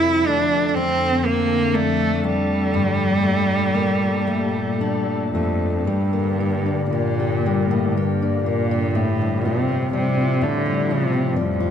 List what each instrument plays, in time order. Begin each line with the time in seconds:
Already playing: ambient pad F2 D3 A4, steel-string acoustic guitar F2 C4, cello E4
0.26 steel-string acoustic guitar A3, cello D4
0.68 cello D4
0.75 cello C4, steel-string acoustic guitar C4
1.25 cello A#3
1.74 cello A3, steel-string acoustic guitar D4
2.24 cello G3, steel-string acoustic guitar A3
2.74 steel-string acoustic guitar G2, ambient pad A#2 G3
3.23 steel-string acoustic guitar A3
3.75 steel-string acoustic guitar A#3
4.27 steel-string acoustic guitar A3
4.81 steel-string acoustic guitar D4
5.32 cello F2, steel-string acoustic guitar A3
5.83 ambient pad G2 D3 A#3, cello G2
5.87 steel-string acoustic guitar G3
6.13 steel-string acoustic guitar A#3
6.40 steel-string acoustic guitar G4
6.66 steel-string acoustic guitar D4
6.92 cello A#2, steel-string acoustic guitar A#3
7.20 steel-string acoustic guitar G4
7.46 steel-string acoustic guitar G3
7.70 cello A2, steel-string acoustic guitar A#3
7.96 cello G2, steel-string acoustic guitar G4
8.22 steel-string acoustic guitar D4
8.45 cello A#2, steel-string acoustic guitar A#3
8.71 steel-string acoustic guitar G4
8.93 ambient pad A2 F3 G3, steel-string acoustic guitar A2, cello A2
9.21 steel-string acoustic guitar G3
9.45 cello C3, steel-string acoustic guitar F4
9.68 steel-string acoustic guitar C4
9.93 cello C3, steel-string acoustic guitar G3
10.19 steel-string acoustic guitar F4
10.41 steel-string acoustic guitar A2, cello D3
10.66 steel-string acoustic guitar G3
10.91 cello C3, steel-string acoustic guitar F4
11.13 steel-string acoustic guitar C4
11.32 cello G2, steel-string acoustic guitar G3
11.39 cello F2
11.60 steel-string acoustic guitar F4